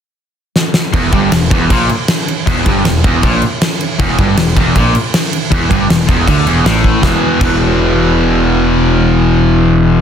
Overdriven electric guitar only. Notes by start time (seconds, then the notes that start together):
0.93 E2
1.13 G2
1.32 E2
1.52 E2
1.71 A#2
2.47 E2
2.67 G2
2.86 E2
3.05 E2
3.24 A#2
4.00 E2
4.19 G2
4.39 E2
4.57 E2
4.76 A#2
5.51 E2
5.70 G2
5.89 E2
6.09 E2
6.28 D3
6.47 E2
6.66 A2
7.02 E2 B2 E3
7.40 E2 B2
7.44 E3